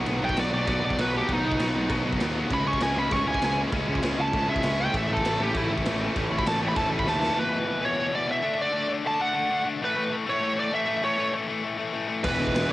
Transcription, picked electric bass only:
0.07 B1
0.22 B1
0.38 B1
0.52 B1
0.67 B1
0.84 B1
0.98 B1
1.29 B1
1.44 B1
1.59 B1
1.74 B1
1.90 B1
2.04 B1
2.20 D#2
2.51 C#2
2.65 C#2
2.81 C#2
2.95 C#2
3.12 C#2
3.27 C#2
3.42 C#2
3.73 C#2
3.88 C#2
4.02 C#2
4.18 C#2
4.33 C#2
4.48 C#2
4.63 C#2
4.94 A1
5.10 A1
5.25 A1
5.40 A1
5.55 A1
5.71 A1
5.85 A1
6.16 A1
6.31 A1
6.46 A1
6.62 A1
6.77 A1
6.92 A1
7.06 D#2
12.25 E1
12.40 E1
12.54 E1
12.69 E1

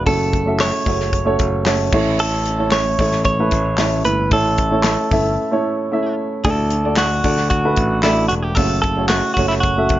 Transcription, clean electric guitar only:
0.07 A4
0.61 C#5
2.20 A4
2.72 C#5
3.25 C#5
4.05 B4
4.33 A4
6.45 A4
6.98 F#4
7.50 F#4
8.03 E4
8.28 F#4
8.42 G4
8.55 A4
8.82 A4
9.08 F#4
9.34 F#4
9.48 E4
9.60 F#4

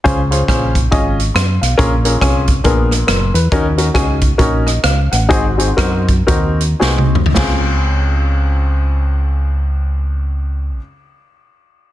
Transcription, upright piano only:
0.04 C#3 C#4 F4 G#4 C5
0.31 C#4 F4 G#4 C5
0.48 C#4 F4 G#4 C5
0.91 C#4 F4 G#4 D#5
1.34 C6
1.61 F5
1.77 A#2 C#4 F4 G#4 A#4
2.05 C#4 F4 G#4 A#4
2.21 C#4 F4 G#4 C#5
2.64 A#2 B3 D4 G#4 A#4
3.07 A#4
3.34 B4
3.52 D#3 C#4 D#4 F#4 A#4
3.78 C#4 D#4 F#4 A#4
3.94 C#4 D#4 F#4 G#4
4.38 C#4 D#4 F#4 A#4
4.66 D#5
4.83 F5
5.12 F#5
5.29 G#2 C4 D#4 F#4 G#4
5.58 C4 D#4 F#4 G#4
5.77 C4 D#4 F#4 A#4
6.27 C4 D#4 F#4 A#4
6.80 C4 D#4 F#4 G#4
7.34 C#2 C4 C#4 F4
7.38 G#4

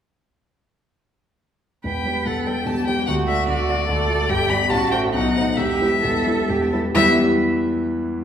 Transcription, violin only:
1.85 G5
2.26 F#5
2.47 G5
2.67 A5
2.86 G5
3.06 F#5
3.28 E5
3.48 D5
4.29 G5
4.49 B5
4.70 A5
4.91 G5
5.13 F#5
5.57 E5
6.95 E5

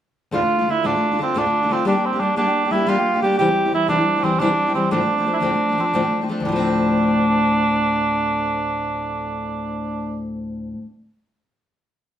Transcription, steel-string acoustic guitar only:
0.31 D2 A2 D3 A3 D4 F4
0.41 D3 A3 D4 F4
0.58 D3 A3 D4 F4
0.68 D3 A3 D4 F4
0.83 D2 A2 D3 A3 D4 F4
0.94 D3 A3 D4 F4
1.11 D3 A3 D4 F4
1.18 D3 A3 D4 F4
1.34 D2 A2 D3 A3 D4 F4
1.44 D3 A3 D4 F4
1.62 D3 A3 D4 F4
1.69 D3 A3 D4 F4
1.85 G3 A#3 D4 G4
1.94 A#3 D4 G4
2.13 A#3 D4 G4
2.20 G3 A#3 D4 G4
2.36 G3 A#3 D4 G4
2.46 A#3 D4 G4
2.65 A#3 D4 G4
2.71 G3 A#3 D4 G4
2.87 G3 A#3 D4 G4
2.98 A#3 D4 G4
3.14 A#3 D4 G4
3.22 G3 A#3 D4 G4
3.39 C3 E3 G3 C4 E4
3.48 G3 C4 E4
3.65 G3 C4 E4
3.72 E3 G3 C4 E4
3.88 C3 E3 G3 C4 E4
3.98 G3 C4 E4
4.16 G3 C4 E4
4.23 E3 G3 C4 E4
4.40 C3 E3 G3 C4 E4
4.49 G3 C4 E4
4.67 G3 C4 E4
4.74 E3 G3 C4 E4
4.91 D2 A2 F3 A3 C4 D4
5.01 F3 A3 C4 D4
5.17 F3 A3 C4 D4
5.25 F3 A3 C4 D4
5.40 D2 A2 F3 A3 C4 D4
5.51 F3 A3 C4 D4
5.69 F3 A3 C4 D4
5.78 F3 A3 C4 D4
5.93 D2 A2 F3 A3 C4 D4
6.02 F3 A3 C4 D4
6.21 F3 A3 C4 D4
6.28 F3 A3 C4 D4
6.40 D2
6.45 A2 F3
6.52 A3 C4
6.58 D4

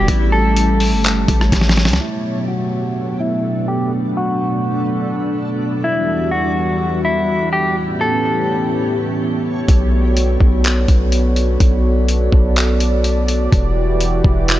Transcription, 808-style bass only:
0.08 A1
0.92 G1
1.28 A1
1.52 A1
1.88 C#2
9.68 B1
10.40 B1
10.88 B1
11.60 B1
12.32 B1
13.53 E1
14.24 E1

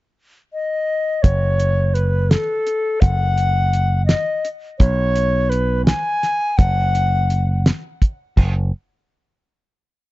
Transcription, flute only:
0.53 D#5
1.22 C#5
1.94 B4
2.30 A4
3.01 F#5
4.06 D#5
4.79 C#5
5.50 B4
5.86 G#5
6.58 F#5

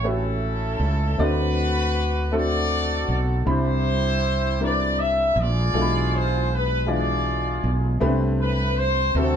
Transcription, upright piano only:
Already playing: A2 A3 C#4 F#4 G4 B4
0.04 A3 C#4 F#4 G4 B4
1.18 D3 A3 C4 D4 F#4 D5
2.32 A3 C4 D4 F#4 A4
3.45 C3 G3 C4 D4 E4 B5
4.60 G3 C4 D4 E4 A#4
4.68 B4
5.74 B2 E3 G#3 D4 F4 A4
5.82 B5
6.86 E3 G#3 D4 F4 D5
8.00 C3 A3 B3 D4 G4 B4
8.07 C4
9.15 C3 A3 C4 D4 F#4 B4
9.23 C5

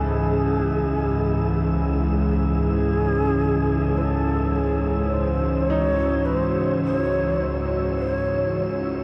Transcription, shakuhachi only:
0.03 G#4
2.30 G#4
3.97 C5
4.01 A4
4.55 G#4
5.09 C5 C#5
5.68 C#5
6.24 B4
6.35 C5
6.84 C5
6.97 C#5
7.98 C5
8.13 C#5

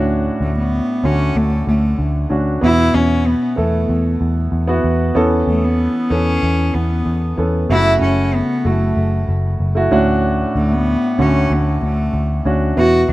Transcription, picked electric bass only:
Already playing: D2
0.41 D2
1.04 D2
1.36 D2
1.67 D2
1.99 D2
2.31 D2
2.63 E2
2.94 E2
3.58 E2
3.89 E2
4.21 E2
4.52 E2
4.84 E2
5.15 E2
5.47 E2
6.11 E2
6.43 E2
6.75 E2
7.06 E2
7.38 E2
7.70 F#1
8.01 F#1
8.65 F#1
8.97 F#1
9.29 F#1
9.60 F#1
9.92 D2
10.56 D2
11.19 D2
11.50 D2
11.82 D2
12.14 D2
12.45 D2
12.77 E2
13.09 E2

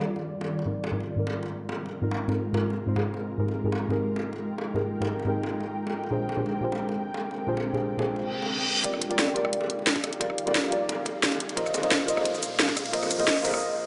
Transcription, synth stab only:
Already playing: D#3 D4 F4 G4 A#4
0.65 G#2 C4 D#4 F4 A#4
0.91 G#2 C4 D#4 F4 A#4
1.16 G#2 C4 D#4 F4 A#4
2.02 G#2 C4 D#4 F4 A#4
2.28 G#2 C4 D#4 F4 A#4
2.53 G#2 C4 D#4 F4 A#4
2.86 G#2 C4 D#4 F4 C5
2.95 G#2 C4 D#4 F4 G#4
3.38 G#2 C4 D#4 G4 G#4 A#4
3.64 G#2 C4 D#4 G4 G#4 A#4
3.88 G#2 C4 D#4 G4 G#4 A#4
4.74 G#2 C4 D#4 G4 G#4 A#4
5.00 G#2 C4 D#4 G4 G#4 A#4
5.25 G#2 C4 D#4 G4 G#4 A#4
6.11 A#2 D4 F4 G4 G#4 C5
6.37 A#2 D4 F4 G4 G#4 C5
6.61 A#2 D4 F4 G4 G#4 C5
7.47 A#2 D4 F4 G4 G#4 C5
7.73 A#2 D4 F4 G4 G#4 C5
7.97 A#2 D4 F4 G4 G#4 C5
8.83 F4 G4 A#4 D5
9.09 F4 G4 A#4 D5
9.34 F4 G4 A#4 D5
10.20 F4 G4 A#4 D5
10.46 F4 G4 A#4 D5
10.70 F4 G4 A#4 D5
11.56 F4 A#4 C5 D#5
11.82 F4 A#4 C5 D#5
12.06 F4 A#4 C5 D#5
12.92 F4 A#4 C5 D#5
13.18 F4 A#4 C5 D#5
13.43 F4 A#4 C5 D#5

